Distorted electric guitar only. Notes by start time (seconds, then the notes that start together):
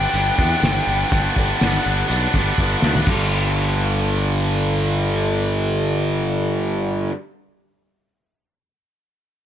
Already playing: G2 D3 G3 B3 D4
0.15 D3 G3 B3 D4
0.38 G3 B3 D4
0.63 G2 D3 G3 B3 D4
0.88 G3 B3 D4
1.11 G2 D3 G3 B3 D4
1.36 G3 B3 D4
1.62 D3 G3 B3 D4
1.85 G2 D3 G3 B3 D4
2.10 D3 G3 B3 D4
2.34 G3 B3 D4
2.58 G2 D3 G3 B3 D4
2.83 G3 B3 D4
3.07 G2 D3 G3